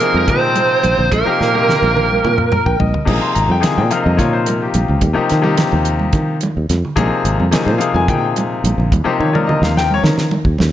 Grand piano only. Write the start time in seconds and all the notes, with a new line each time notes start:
0.00 C3 F3 A#3 D#4 G#4
0.27 C3 F3 A#3 D#4 G#4
1.25 C3 F3 A#3 D#4 G4
1.53 C3 F3 A#3 D#4 G4
2.52 A#5
2.66 G5
2.79 D#5
3.05 C3 F3 A#3 D#4 G#4
3.22 C6
3.35 A#5
3.51 G5
3.60 C3 F3 A#3 D#4 G#4 G#5
3.78 G5
3.90 C3 F3 A#3 D#4 A#4 F5
4.03 D#5
4.17 C3 F3 A#3 D#4 F4 C#5
4.33 C5
4.47 A#4
4.62 G4
5.13 C3 F3 A#3 D#4 G4
5.42 C3 F3 A#3 D#4 G4
6.96 C3 F3 A#3 D#4 G#4
7.51 C3 F3 A#3 D#4 G#4 G#5
7.66 C5
7.78 C3 F3 A#3 D#4 G#4 F5
7.94 G#5
8.08 C3 F3 A#3 D#4 G#4 G5
9.04 C3 F3 A#3 D#4 G4 C5
9.20 C#5
9.33 C3 F3 A#3 D#4 A#4 D5
9.47 D#5
9.63 F5
9.77 G5
9.94 C#5